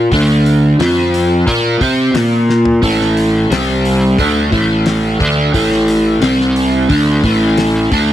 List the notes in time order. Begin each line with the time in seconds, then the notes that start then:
Already playing: A#3 F4 A#4
0.12 D2 D3 A3 D4, kick, open hi-hat
0.46 open hi-hat
0.79 F2 F3 C4 F4, snare, open hi-hat
1.14 open hi-hat
1.47 A#2 A#3 F4 A#4, kick, open hi-hat
1.81 C3 C4 G4 C5, kick, open hi-hat
2.14 A#2 A#3 F4 A#4, snare, open hi-hat
2.50 snare
2.65 floor tom
2.82 A1 A2 E3 A3, kick, open hi-hat
3.01 snare
3.17 open hi-hat
3.50 C2 C3 G3 C4, snare, open hi-hat
3.85 open hi-hat
4.19 D2 D3 A3 D4, kick, open hi-hat
4.52 A1 A2 E3 A3, kick, open hi-hat
4.86 snare, open hi-hat
5.20 D2 D3 A3 D4, kick, open hi-hat
5.54 A1 A2 E3 A3, kick, open hi-hat
5.72 snare
5.88 open hi-hat
6.21 C2 C3 G3 C4, snare, open hi-hat
6.40 snare
6.56 open hi-hat
6.89 D2 D3 A3 D4, kick, open hi-hat
7.24 A1 A2 E3 A3, kick, open hi-hat
7.57 snare, open hi-hat
7.91 D2 D3 A3 D4, kick, open hi-hat